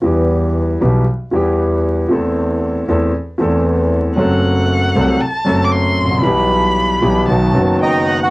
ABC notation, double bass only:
X:1
M:4/4
L:1/8
Q:1/4=116
K:Em
V:1 name="Double bass" clef=bass
E,,3 B,,, z E,,3 | E,,3 E,, z E,,3 | F,,,3 C,, z F,,,2 A,,, | B,,,3 B,,, B,,, F,,, z2 |]